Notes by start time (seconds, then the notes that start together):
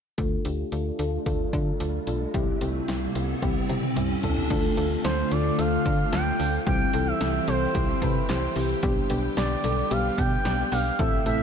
0.18 D2 A3 D4 F4 A4, kick, closed hi-hat, riser
0.45 D2 A3 D4 F4 G4, closed hi-hat
0.72 D2 A3 D4 F4 A4, closed hi-hat
0.99 D2 A3 D4 F4 A4, closed hi-hat
1.26 D2 A3 D4 F4 A4, kick, closed hi-hat
1.53 D3 A3 D4 F4 A4, kick, closed hi-hat
1.80 D2 A3 D4 F4 A4, closed hi-hat
2.07 B1 A3 D4 F4 A4, closed hi-hat
2.34 C2 G3 C4 E4 G4, kick, closed hi-hat
2.61 C2 G3 C4 E4 G4, closed hi-hat
2.88 C2 G3 C4 E4 G4, snare, closed hi-hat
3.15 C2 G3 C4 E4 G4, closed hi-hat
3.42 C2 G3 C4 E4 G4, kick, closed hi-hat, high tom
3.69 C3 G3 C4 E4 G4, closed hi-hat, mid tom
3.83 mid tom
3.96 C2 G3 C4 E4 G4, closed hi-hat, mid tom
4.23 C2 G3 C4 E4 A4, closed hi-hat, floor tom
4.37 floor tom
4.50 D2 D3 A3 D4 F4 A4, kick, closed hi-hat, crash
4.77 D2 A3 D4 F4 A4, closed hi-hat
5.04 D2 A3 D4 F4 A4 C5, snare, closed hi-hat
5.31 D2 A3 D4 F4 A4 D5, closed hi-hat
5.58 D2 A3 D4 F4 A4 F5, closed hi-hat
5.86 D3 A3 D4 F4 A4, kick, closed hi-hat
6.13 D2 A3 D4 F4 A4 G5, snare, closed hi-hat
6.39 D2 A3 D4 F4 A4, open hi-hat
6.66 C2 E3 G3 C4 E4 G4 G5, kick, closed hi-hat
6.94 C2 G3 C4 E4 A4, closed hi-hat
7.07 E5
7.21 C2 G3 C4 E4 A4, snare, closed hi-hat
7.48 C2 G3 C4 E4 A4 C5, closed hi-hat
7.75 C2 G3 C4 E4 G4, kick, closed hi-hat
8.02 C3 G3 C4 E4 A4 B4, kick, closed hi-hat
8.29 C2 G3 C4 E4 G4 C5, snare, closed hi-hat
8.56 C2 G3 C4 E4 G4, open hi-hat
8.83 B1 D3 G3 B3 D4 G4, kick, closed hi-hat
9.10 B1 G3 B3 D4 G4, closed hi-hat
9.37 B1 G3 B3 D4 G4 D5, snare, closed hi-hat
9.64 B1 G3 B3 D4 A4, closed hi-hat
9.91 B1 G3 B3 D4 G4 F5, closed hi-hat
10.18 B2 G3 B3 D4 G4 G5, kick, closed hi-hat
10.45 B1 G3 B3 D4 G4, snare, closed hi-hat
10.72 B1 G3 B3 D4 G4 F5, open hi-hat
10.99 A1 C3 A3 C4 E4 A4 E5, kick, closed hi-hat
11.26 A1 A3 C4 E4 A4 E5, closed hi-hat